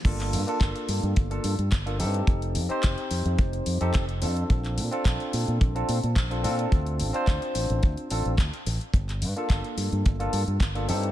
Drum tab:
CC |x---------------|----------------|----------------|----------------|
HH |xxoxxxoxxxoxxxox|xxoxxxoxxxoxxxox|xxoxxxoxxxoxxxox|xxoxxxoxxxoxxxox|
CP |-x--x-------x---|----x-------x---|-x--x-------x---|----x-------x---|
BD |o---o---o---o---|o---o---o---o---|o---o---o---o---|o---o---o---o---|

CC |----------------|
HH |xxoxxxoxxxoxxxox|
CP |-x--x-------x---|
BD |o---o---o---o---|